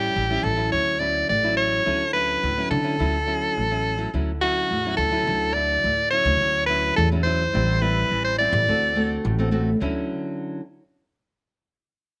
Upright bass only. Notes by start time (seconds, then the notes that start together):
0.16 A1
0.43 A1
0.73 D2
1.30 A1
1.87 D2
2.43 D2
2.71 D3
3.00 D2
3.57 A1
4.14 D2
4.71 E2
4.98 D2
5.27 D2
5.84 D2
6.25 D2
6.41 D2
6.98 E2
7.55 A1
8.11 A1
8.52 A1
8.68 D2
9.25 A1
9.81 D2